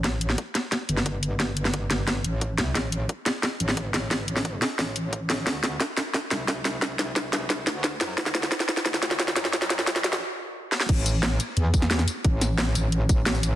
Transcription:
<<
  \new Staff \with { instrumentName = "Wobble bass" } { \clef bass \time 4/4 \key a \dorian \tempo 4 = 177 a,,4 r4. g,,4.~ | g,,2~ g,,8 a,,4 c,8 | a,,4 r4. a,,4 a,,8~ | a,,8 a,,4 r8 a,,4. a,,8 |
d,4 r4. c,4.~ | c,2~ c,8 d,4 fis,8 | d,4 r4 d,4. fis,8~ | fis,4 c,4 r2 |
a,,4. r8 e,4. r8 | a,,4. a,,2~ a,,8 | }
  \new DrumStaff \with { instrumentName = "Drums" } \drummode { \time 4/4 <hh bd sn>8 hh16 sn16 <hh bd>8 <hh sn>8 <hh bd sn>8 hh16 sn16 <hh bd>8 hh8 | <hh bd sn>8 hh16 sn16 <hh bd>8 <hh sn>8 <hh bd sn>8 hh8 <hh bd>8 <hh sn>8 | <hh bd sn>8 hh8 <hh bd>8 <hh sn>8 <hh bd sn>8 hh16 sn16 <hh bd>8 <hh sn>8 | <hh bd sn>8 hh16 sn16 <hh bd>8 <hh sn>8 <hh bd sn>8 hh8 <hh bd>8 <hh sn>8 |
<hh bd sn>8 <hh sn>8 <hh bd sn>8 <hh sn>8 <hh bd sn>8 <hh sn>8 <hh bd sn>8 <hh sn>8 | <hh bd sn>8 <hh sn>8 <hh bd sn>8 <hh sn>8 <hh bd sn>8 <hh sn>8 <hh bd sn>8 <hh sn>8 | <hh bd sn>16 sn16 <hh sn>16 sn16 <hh bd sn>16 sn16 <hh sn>16 sn16 <hh bd sn>16 sn16 <hh sn>16 sn16 <hh bd sn>16 sn16 <hh sn>16 sn16 | <hh bd sn>16 sn16 <hh sn>16 sn16 <hh bd sn>16 sn16 <hh sn>16 sn16 r4 r8 sn16 sn16 |
<cymc hh bd>8 <hh tamb>8 <hh sn>8 <hh tamb>8 hh8 <hh bd tamb>16 sn16 <hh sn>16 <sn tamb>16 <hh tamb>8 | <hh bd>8 <hh sn tamb>8 <hh sn>8 <hh tamb>8 hh8 <hh bd tamb>8 <hh sn>16 tamb16 <hh tamb>8 | }
>>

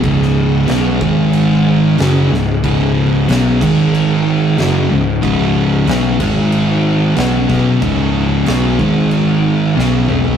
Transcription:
<<
  \new Staff \with { instrumentName = "String machine" } { \time 4/4 \key gis \phrygian \tempo 4 = 92 <cis' gis' dis''>4. <gis dis'>4. <cis' dis''>4~ | <cis' dis''>4. <gis dis'>4. <cis' dis''>4~ | <cis' dis''>4. <gis dis'>4. <cis' dis''>4~ | <cis' dis''>4. <gis dis'>4. <cis' gis' dis''>4 | }
  \new Staff \with { instrumentName = "Distorted electric guitar" } { \clef bass \time 4/4 \key gis \phrygian <cis, gis, cis>4 <b, fis b>8 <gis, dis gis>4. <fis, cis fis>8 <cis, gis,>8 | <cis, gis, cis>4 <b, fis b>8 <gis, dis gis>4. <fis, cis fis>8 <cis, gis,>8 | <cis, gis, cis>4 <b, fis b>8 <gis, dis gis>4. <b, fis b>8 <b, fis b>8 | <cis, gis, cis>4 <b, fis b>8 <gis, dis gis>4. <b, fis b>8 <b, fis b>8 | }
  \new Staff \with { instrumentName = "Distorted electric guitar" } { \clef bass \time 4/4 \key gis \phrygian <cis, gis, cis>4 <b, fis b>8 <gis, dis gis>4. <fis, cis fis>8 <cis, gis,>8 | <cis, gis, cis>4 <b, fis b>8 <gis, dis gis>4. <fis, cis fis>8 <cis, gis,>8 | <cis, gis, cis>4 <b, fis b>8 <gis, dis gis>4. <b, fis b>8 <b, fis b>8 | <cis, gis, cis>4 <b, fis b>8 <gis, dis gis>4. <b, fis b>8 <b, fis b>8 | }
  \new Staff \with { instrumentName = "Picked electric bass" } { \clef bass \time 4/4 \key gis \phrygian cis,,4 b,,8 gis,,4. fis,,8 cis,,8 | cis,,4 b,,8 gis,,4. fis,,8 cis,,8 | cis,,4 b,,8 gis,,4. b,,8 b,,8 | cis,,4 b,,8 gis,,4. b,,8 b,,8 | }
  \new DrumStaff \with { instrumentName = "Drums" } \drummode { \time 4/4 <cymc bd>16 sn8. <cymc sn>8 bd8 cymc4 <cymc sn>8 sn8 | <cymc bd>4 <cymc sn>8 <cymc bd>8 cymc4 <cymc sn>4 | <cymc bd>4 <cymc sn>8 <cymc bd>8 cymc4 <cymc sn>8 <bd sn>8 | <cymc bd>4 <cymc sn>8 bd8 cymc4 sn8 toml16 tomfh16 | }
>>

